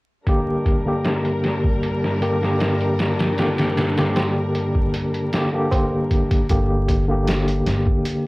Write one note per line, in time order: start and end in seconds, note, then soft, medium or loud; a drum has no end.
0.27 6.46 G2 medium
0.27 0.81 D3 medium
0.27 6.46 G3 medium
0.27 0.82 A#3 medium
0.27 6.46 D4 medium
0.27 0.82 G4 medium
0.27 6.46 A#4 medium
0.27 kick loud
0.27 closed hi-hat medium
0.66 kick medium
0.66 closed hi-hat medium
0.85 2.16 D3 medium
0.85 2.17 A#3 medium
0.85 2.18 G4 medium
1.05 snare loud
1.05 closed hi-hat medium
1.25 closed hi-hat soft
1.44 snare medium
1.44 closed hi-hat medium
1.64 kick medium
1.83 closed hi-hat medium
2.04 snare soft
2.21 2.36 D3 medium
2.21 2.37 A#3 medium
2.21 2.37 G4 medium
2.21 closed hi-hat medium
2.41 3.33 D3 medium
2.41 3.34 A#3 medium
2.41 3.35 G4 medium
2.41 snare soft
2.60 snare loud
2.60 closed hi-hat medium
2.81 closed hi-hat soft
2.99 snare loud
2.99 closed hi-hat medium
3.19 snare medium
3.19 closed hi-hat medium
3.38 3.92 D3 medium
3.38 3.93 A#3 medium
3.38 3.93 G4 medium
3.38 snare medium
3.38 closed hi-hat medium
3.58 snare medium
3.58 closed hi-hat medium
3.77 snare loud
3.77 closed hi-hat medium
3.96 5.28 D3 medium
3.96 5.29 A#3 medium
3.96 5.29 G4 medium
3.96 snare medium
3.96 closed hi-hat medium
4.16 snare loud
4.16 closed hi-hat medium
4.16 tabla na medium
4.55 closed hi-hat medium
4.75 kick medium
4.94 closed hi-hat medium
5.14 closed hi-hat soft
5.33 5.48 D3 medium
5.33 5.48 A#3 medium
5.33 5.49 G4 medium
5.33 snare loud
5.33 closed hi-hat medium
5.52 6.45 D3 medium
5.52 6.45 A#3 medium
5.52 6.46 G4 medium
5.71 kick medium
5.71 closed hi-hat medium
5.71 tabla na medium
6.11 kick medium
6.11 closed hi-hat medium
6.31 kick loud
6.31 closed hi-hat medium
6.49 7.63 G1 medium
6.49 7.04 D3 medium
6.49 7.04 A#3 medium
6.49 7.04 G4 medium
6.49 kick loud
6.49 closed hi-hat medium
6.89 kick medium
6.89 closed hi-hat medium
7.08 8.27 D3 medium
7.08 8.27 A#3 medium
7.08 8.27 G4 medium
7.27 snare loud
7.27 closed hi-hat medium
7.48 closed hi-hat soft
7.66 7.84 G1 medium
7.66 snare medium
7.66 closed hi-hat medium
7.87 kick medium
8.05 closed hi-hat medium